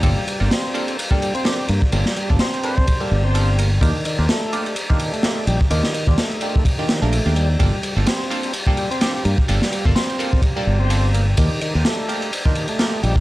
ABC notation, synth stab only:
X:1
M:4/4
L:1/16
Q:"Swing 16ths" 1/4=127
K:Gm
V:1 name="Synth stab"
[B,DFA] z2 [B,DFA] z2 [B,DFA]2 z [B,DFA]2 z [B,DFA] z3 | [B,DFA] z2 [B,DFA] z2 [B,DFA]2 z [B,DFA]2 z [B,DFA] z3 | [B,DFG] z2 [B,DFG] z2 [B,DFG]2 z [B,DFG]2 z [B,DFG] z3 | [B,DFG] z2 [B,DFG] z2 [B,DFG]2 z [B,DFG]2 [B,DFB] z [B,DFG]2 z |
[B,DFA] z2 [B,DFA] z2 [B,DFA]2 z [B,DFA]2 z [B,DFA] z3 | [B,DFA] z2 [B,DFA] z2 [B,DFA]2 z [B,DFA]2 z [B,DFA] z3 | [B,DFG] z2 [B,DFG] z2 [B,DFG]2 z [B,DFG]2 z [B,DFG] z3 |]